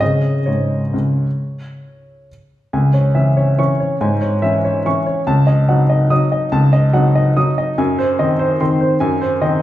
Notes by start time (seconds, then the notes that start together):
0.00 C#3 C#4 G#4 D#5
0.46 G#2 C#5
0.94 C#2
2.73 C#2 G#5
2.94 C#5
3.15 E3 C#4 E5
3.37 C#5
3.58 E3 C#4 C#6
3.80 C#5
4.01 G#2 G#5
4.22 C#5
4.42 E3 C#4 E5
4.65 C#5
4.86 E3 C#4 C#6
5.06 C#5
5.27 C#2 A5
5.47 D#5
5.68 F#3 D#4 F#5
5.90 D#5
6.10 F#3 D#4 D#6
6.32 D#5
6.52 C#2 A5
6.73 D#5
6.93 F#3 D#4 F#5
7.15 D#5
7.36 F#3 D#4 D#6
7.58 D#5
7.78 F#2 G#5
7.99 C5
8.19 D#3 C4 D#5
8.39 C5
8.61 D#3 C4 C6
8.81 C5
9.00 F#2 G#5
9.21 C5
9.42 D#3 C4 D#5